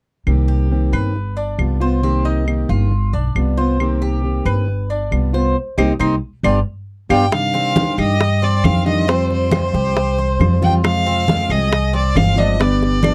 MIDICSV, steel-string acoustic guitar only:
0, 0, Header, 1, 3, 480
1, 0, Start_track
1, 0, Key_signature, -3, "minor"
1, 0, Tempo, 440205
1, 297, Time_signature, 4, 2, 24, 8
1, 7986, Key_signature, -3, "minor"
1, 14332, End_track
2, 0, Start_track
2, 0, Title_t, "Steel-string acoustic guitar"
2, 0, Program_c, 0, 25
2, 291, Note_on_c, 0, 48, 57
2, 298, Note_on_c, 0, 51, 55
2, 303, Note_on_c, 0, 58, 60
2, 310, Note_on_c, 0, 60, 61
2, 312, Note_on_c, 0, 67, 59
2, 760, Note_off_c, 0, 51, 0
2, 765, Note_off_c, 0, 48, 0
2, 767, Note_off_c, 0, 58, 0
2, 772, Note_off_c, 0, 60, 0
2, 774, Note_on_c, 0, 51, 41
2, 775, Note_off_c, 0, 67, 0
2, 780, Note_on_c, 0, 58, 44
2, 786, Note_on_c, 0, 60, 47
2, 787, Note_on_c, 0, 67, 47
2, 1247, Note_off_c, 0, 51, 0
2, 1250, Note_off_c, 0, 58, 0
2, 1253, Note_off_c, 0, 60, 0
2, 1254, Note_off_c, 0, 67, 0
2, 1738, Note_on_c, 0, 55, 37
2, 1747, Note_on_c, 0, 59, 41
2, 1756, Note_on_c, 0, 65, 47
2, 1955, Note_off_c, 0, 65, 0
2, 1968, Note_on_c, 0, 65, 60
2, 1970, Note_off_c, 0, 55, 0
2, 1974, Note_off_c, 0, 59, 0
2, 1989, Note_on_c, 0, 59, 45
2, 2205, Note_off_c, 0, 65, 0
2, 2205, Note_on_c, 0, 48, 55
2, 2209, Note_on_c, 0, 51, 61
2, 2215, Note_off_c, 0, 59, 0
2, 2217, Note_on_c, 0, 58, 63
2, 2220, Note_on_c, 0, 60, 57
2, 2227, Note_on_c, 0, 67, 71
2, 2676, Note_off_c, 0, 51, 0
2, 2684, Note_off_c, 0, 48, 0
2, 2686, Note_off_c, 0, 58, 0
2, 2688, Note_off_c, 0, 60, 0
2, 2689, Note_on_c, 0, 51, 42
2, 2695, Note_off_c, 0, 67, 0
2, 2699, Note_on_c, 0, 58, 44
2, 2701, Note_on_c, 0, 60, 45
2, 2709, Note_on_c, 0, 67, 47
2, 3166, Note_off_c, 0, 51, 0
2, 3169, Note_off_c, 0, 58, 0
2, 3173, Note_off_c, 0, 60, 0
2, 3176, Note_off_c, 0, 67, 0
2, 3663, Note_on_c, 0, 55, 45
2, 3672, Note_on_c, 0, 59, 40
2, 3681, Note_on_c, 0, 65, 46
2, 3887, Note_off_c, 0, 65, 0
2, 3894, Note_off_c, 0, 55, 0
2, 3898, Note_off_c, 0, 59, 0
2, 3900, Note_on_c, 0, 65, 57
2, 3916, Note_on_c, 0, 59, 45
2, 4133, Note_off_c, 0, 65, 0
2, 4138, Note_on_c, 0, 48, 64
2, 4140, Note_off_c, 0, 59, 0
2, 4143, Note_on_c, 0, 51, 63
2, 4148, Note_on_c, 0, 58, 61
2, 4151, Note_on_c, 0, 60, 61
2, 4155, Note_on_c, 0, 67, 66
2, 4607, Note_off_c, 0, 51, 0
2, 4612, Note_off_c, 0, 48, 0
2, 4617, Note_off_c, 0, 58, 0
2, 4619, Note_off_c, 0, 60, 0
2, 4620, Note_on_c, 0, 51, 43
2, 4621, Note_off_c, 0, 67, 0
2, 4628, Note_on_c, 0, 58, 47
2, 4635, Note_on_c, 0, 60, 47
2, 4642, Note_on_c, 0, 67, 46
2, 5093, Note_off_c, 0, 51, 0
2, 5097, Note_off_c, 0, 58, 0
2, 5101, Note_off_c, 0, 60, 0
2, 5104, Note_off_c, 0, 67, 0
2, 5574, Note_on_c, 0, 55, 43
2, 5589, Note_on_c, 0, 59, 42
2, 5598, Note_on_c, 0, 65, 46
2, 5801, Note_off_c, 0, 65, 0
2, 5810, Note_off_c, 0, 55, 0
2, 5815, Note_on_c, 0, 65, 63
2, 5818, Note_off_c, 0, 59, 0
2, 5833, Note_on_c, 0, 59, 51
2, 6051, Note_off_c, 0, 65, 0
2, 6060, Note_off_c, 0, 59, 0
2, 6303, Note_on_c, 0, 60, 78
2, 6305, Note_on_c, 0, 58, 78
2, 6308, Note_on_c, 0, 63, 77
2, 6458, Note_off_c, 0, 60, 0
2, 6459, Note_off_c, 0, 58, 0
2, 6459, Note_off_c, 0, 63, 0
2, 6543, Note_on_c, 0, 58, 78
2, 6547, Note_on_c, 0, 60, 82
2, 6548, Note_on_c, 0, 63, 83
2, 6699, Note_off_c, 0, 58, 0
2, 6700, Note_off_c, 0, 60, 0
2, 6700, Note_off_c, 0, 63, 0
2, 7022, Note_on_c, 0, 62, 81
2, 7023, Note_on_c, 0, 55, 77
2, 7026, Note_on_c, 0, 59, 82
2, 7176, Note_off_c, 0, 62, 0
2, 7179, Note_off_c, 0, 55, 0
2, 7180, Note_off_c, 0, 59, 0
2, 7735, Note_on_c, 0, 55, 86
2, 7739, Note_on_c, 0, 59, 79
2, 7743, Note_on_c, 0, 62, 81
2, 7894, Note_off_c, 0, 59, 0
2, 7894, Note_off_c, 0, 62, 0
2, 7895, Note_off_c, 0, 55, 0
2, 7974, Note_on_c, 0, 48, 61
2, 7980, Note_on_c, 0, 51, 64
2, 7988, Note_on_c, 0, 55, 65
2, 7988, Note_on_c, 0, 62, 63
2, 7989, Note_on_c, 0, 67, 61
2, 8447, Note_off_c, 0, 51, 0
2, 8450, Note_off_c, 0, 48, 0
2, 8452, Note_off_c, 0, 55, 0
2, 8457, Note_off_c, 0, 62, 0
2, 8457, Note_off_c, 0, 67, 0
2, 8461, Note_on_c, 0, 51, 42
2, 8465, Note_on_c, 0, 55, 43
2, 8474, Note_on_c, 0, 62, 47
2, 8474, Note_on_c, 0, 67, 47
2, 8928, Note_off_c, 0, 51, 0
2, 8930, Note_off_c, 0, 55, 0
2, 8930, Note_off_c, 0, 62, 0
2, 8934, Note_off_c, 0, 67, 0
2, 9425, Note_on_c, 0, 51, 43
2, 9432, Note_on_c, 0, 55, 44
2, 9439, Note_on_c, 0, 62, 41
2, 9441, Note_on_c, 0, 67, 47
2, 9647, Note_off_c, 0, 67, 0
2, 9650, Note_off_c, 0, 62, 0
2, 9655, Note_off_c, 0, 51, 0
2, 9658, Note_off_c, 0, 55, 0
2, 9660, Note_on_c, 0, 67, 61
2, 9663, Note_on_c, 0, 62, 56
2, 9672, Note_on_c, 0, 55, 52
2, 9679, Note_on_c, 0, 51, 50
2, 9892, Note_off_c, 0, 67, 0
2, 9894, Note_off_c, 0, 62, 0
2, 9895, Note_off_c, 0, 55, 0
2, 9896, Note_off_c, 0, 51, 0
2, 9901, Note_on_c, 0, 53, 63
2, 9908, Note_on_c, 0, 55, 65
2, 9913, Note_on_c, 0, 60, 68
2, 9917, Note_on_c, 0, 65, 72
2, 10369, Note_off_c, 0, 53, 0
2, 10375, Note_off_c, 0, 55, 0
2, 10378, Note_off_c, 0, 60, 0
2, 10380, Note_off_c, 0, 65, 0
2, 10382, Note_on_c, 0, 53, 43
2, 10391, Note_on_c, 0, 55, 47
2, 10393, Note_on_c, 0, 60, 44
2, 10399, Note_on_c, 0, 65, 52
2, 10848, Note_off_c, 0, 53, 0
2, 10856, Note_off_c, 0, 55, 0
2, 10858, Note_off_c, 0, 60, 0
2, 10861, Note_off_c, 0, 65, 0
2, 11341, Note_on_c, 0, 53, 39
2, 11346, Note_on_c, 0, 55, 45
2, 11353, Note_on_c, 0, 60, 40
2, 11363, Note_on_c, 0, 65, 46
2, 11563, Note_off_c, 0, 65, 0
2, 11571, Note_off_c, 0, 53, 0
2, 11573, Note_off_c, 0, 55, 0
2, 11574, Note_off_c, 0, 60, 0
2, 11577, Note_on_c, 0, 65, 65
2, 11587, Note_on_c, 0, 60, 58
2, 11594, Note_on_c, 0, 55, 53
2, 11808, Note_off_c, 0, 65, 0
2, 11809, Note_on_c, 0, 48, 63
2, 11814, Note_off_c, 0, 55, 0
2, 11814, Note_off_c, 0, 60, 0
2, 11815, Note_on_c, 0, 53, 64
2, 11818, Note_on_c, 0, 56, 68
2, 11824, Note_on_c, 0, 65, 63
2, 11825, Note_on_c, 0, 60, 66
2, 12279, Note_off_c, 0, 53, 0
2, 12284, Note_off_c, 0, 48, 0
2, 12289, Note_off_c, 0, 56, 0
2, 12292, Note_off_c, 0, 60, 0
2, 12292, Note_off_c, 0, 65, 0
2, 12292, Note_on_c, 0, 53, 45
2, 12300, Note_on_c, 0, 56, 45
2, 12304, Note_on_c, 0, 60, 54
2, 12313, Note_on_c, 0, 65, 47
2, 12761, Note_off_c, 0, 56, 0
2, 12762, Note_off_c, 0, 53, 0
2, 12764, Note_off_c, 0, 60, 0
2, 12766, Note_off_c, 0, 65, 0
2, 13246, Note_on_c, 0, 53, 44
2, 13253, Note_on_c, 0, 56, 44
2, 13260, Note_on_c, 0, 60, 43
2, 13266, Note_on_c, 0, 65, 46
2, 13462, Note_off_c, 0, 65, 0
2, 13467, Note_off_c, 0, 60, 0
2, 13475, Note_off_c, 0, 56, 0
2, 13475, Note_on_c, 0, 65, 67
2, 13480, Note_on_c, 0, 60, 64
2, 13481, Note_off_c, 0, 53, 0
2, 13488, Note_on_c, 0, 56, 53
2, 13494, Note_on_c, 0, 53, 52
2, 13715, Note_off_c, 0, 65, 0
2, 13718, Note_off_c, 0, 60, 0
2, 13722, Note_off_c, 0, 56, 0
2, 13724, Note_off_c, 0, 53, 0
2, 13727, Note_on_c, 0, 50, 60
2, 13728, Note_on_c, 0, 55, 65
2, 13733, Note_on_c, 0, 59, 64
2, 13741, Note_on_c, 0, 62, 67
2, 13741, Note_on_c, 0, 67, 74
2, 14191, Note_off_c, 0, 55, 0
2, 14195, Note_off_c, 0, 59, 0
2, 14201, Note_off_c, 0, 50, 0
2, 14204, Note_on_c, 0, 55, 45
2, 14205, Note_off_c, 0, 62, 0
2, 14207, Note_off_c, 0, 67, 0
2, 14208, Note_on_c, 0, 59, 45
2, 14218, Note_on_c, 0, 62, 52
2, 14221, Note_on_c, 0, 67, 48
2, 14332, Note_off_c, 0, 55, 0
2, 14332, Note_off_c, 0, 59, 0
2, 14332, Note_off_c, 0, 62, 0
2, 14332, Note_off_c, 0, 67, 0
2, 14332, End_track
3, 0, Start_track
3, 0, Title_t, "Muted steel-string acoustic guitar strokes"
3, 1260, Note_on_c, 9, 29, 55
3, 1369, Note_off_c, 9, 29, 0
3, 3174, Note_on_c, 9, 29, 52
3, 3283, Note_off_c, 9, 29, 0
3, 5101, Note_on_c, 9, 29, 49
3, 5210, Note_off_c, 9, 29, 0
3, 8940, Note_on_c, 9, 29, 51
3, 9049, Note_off_c, 9, 29, 0
3, 10861, Note_on_c, 9, 29, 51
3, 10970, Note_off_c, 9, 29, 0
3, 12770, Note_on_c, 9, 29, 60
3, 12879, Note_off_c, 9, 29, 0
3, 14332, End_track
0, 0, End_of_file